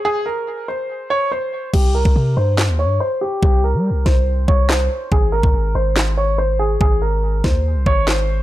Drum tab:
CC |----------------|x---------------|----------------|----------------|
CP |----------------|--------x-------|------------x---|--------x-------|
SD |----------------|--------o-------|------o-----o---|--------o-------|
BD |----------------|o--o------------|o-----o---o-----|o--o------------|

CC |----------------|
CP |------------x---|
SD |------o-----o---|
BD |o-----o---o-----|